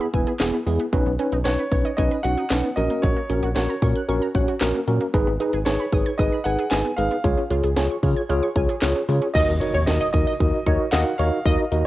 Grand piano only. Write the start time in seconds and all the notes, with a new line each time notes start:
1.44 C#5
1.97 D#5
2.23 F#5
2.76 D#5
3.02 C#5
3.55 C#5
5.65 C#5
6.18 D#5
6.44 F#5
6.70 G#5
6.97 F5
9.34 D#5
9.60 C#5
9.86 D#5
10.13 D#5
10.91 F#5
11.18 F5